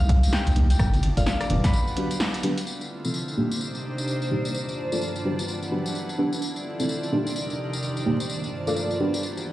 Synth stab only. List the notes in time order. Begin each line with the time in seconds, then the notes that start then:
0.56 A#3 D4 D#4 G4
1.17 F4 A4 A#4 D5
1.50 D4 F#4 G4 B4
1.97 D4 F#4 G4 B4
2.44 D4 F#4 G4 B4
3.05 C4 E4 F4 A4
3.37 A#3 D4 D#4 G4
4.31 A#3 D4 D#4 G4
4.92 F4 A4 A#4 D5
5.25 D4 F#4 G4 B4
5.72 D4 F#4 G4 B4
6.18 D4 F#4 G4 B4
6.80 C4 E4 F4 A4
7.12 A#3 D4 D#4 G4
8.06 A#3 D4 D#4 G4
8.67 F4 A4 A#4 D5
9.00 D4 F#4 G4 B4